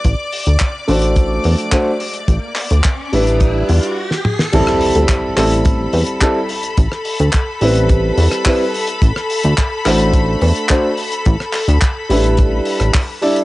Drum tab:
CC |----------------|----------------|x---------------|----------------|
HH |x-oxx-oxx-oxx-ox|x-oxx-oxx-ox----|x-oxx-oxx-oxx-ox|x-oxx-oxx-oxo-ox|
CP |----x-------x---|--x-x-----------|----x-x-----x---|----x-------x---|
SD |----------------|-------------o-o|-r----r---------|-r---------r----|
T2 |----------------|--------------o-|----------------|----------------|
BD |o---o---o---o---|o---o---o-------|o---o---o---o---|o---o---o---o---|

CC |----------------|----------------|
HH |x-oxx-oxx-oxx-ox|x-oxx-oxx-oxo-ox|
CP |----x-x-----x---|--x-x-------x---|
SD |-r----r---------|-r---------r----|
T2 |----------------|----------------|
BD |o---o---o---o---|o---o---o---o---|